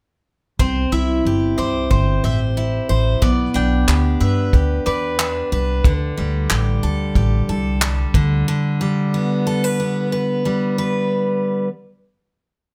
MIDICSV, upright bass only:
0, 0, Header, 1, 2, 480
1, 0, Start_track
1, 0, Key_signature, 1, "major"
1, 0, Tempo, 657174
1, 435, Time_signature, 4, 2, 24, 8
1, 9307, End_track
2, 0, Start_track
2, 0, Title_t, "Upright bass"
2, 0, Program_c, 0, 32
2, 436, Note_on_c, 0, 36, 97
2, 632, Note_off_c, 0, 36, 0
2, 671, Note_on_c, 0, 36, 72
2, 870, Note_off_c, 0, 36, 0
2, 915, Note_on_c, 0, 31, 83
2, 1111, Note_off_c, 0, 31, 0
2, 1155, Note_on_c, 0, 36, 54
2, 1351, Note_off_c, 0, 36, 0
2, 1391, Note_on_c, 0, 31, 87
2, 1589, Note_off_c, 0, 31, 0
2, 1634, Note_on_c, 0, 33, 77
2, 2027, Note_off_c, 0, 33, 0
2, 2115, Note_on_c, 0, 33, 78
2, 2311, Note_off_c, 0, 33, 0
2, 2352, Note_on_c, 0, 35, 88
2, 2549, Note_off_c, 0, 35, 0
2, 2595, Note_on_c, 0, 35, 83
2, 2790, Note_off_c, 0, 35, 0
2, 2834, Note_on_c, 0, 38, 87
2, 3030, Note_off_c, 0, 38, 0
2, 3073, Note_on_c, 0, 43, 69
2, 3269, Note_off_c, 0, 43, 0
2, 3311, Note_on_c, 0, 38, 82
2, 3508, Note_off_c, 0, 38, 0
2, 3553, Note_on_c, 0, 40, 77
2, 3946, Note_off_c, 0, 40, 0
2, 4033, Note_on_c, 0, 36, 80
2, 4229, Note_off_c, 0, 36, 0
2, 4267, Note_on_c, 0, 38, 82
2, 4465, Note_off_c, 0, 38, 0
2, 4518, Note_on_c, 0, 38, 91
2, 4711, Note_off_c, 0, 38, 0
2, 4753, Note_on_c, 0, 33, 76
2, 4949, Note_off_c, 0, 33, 0
2, 4991, Note_on_c, 0, 38, 66
2, 5187, Note_off_c, 0, 38, 0
2, 5225, Note_on_c, 0, 33, 84
2, 5424, Note_off_c, 0, 33, 0
2, 5473, Note_on_c, 0, 36, 82
2, 5866, Note_off_c, 0, 36, 0
2, 5947, Note_on_c, 0, 38, 87
2, 6146, Note_off_c, 0, 38, 0
2, 9307, End_track
0, 0, End_of_file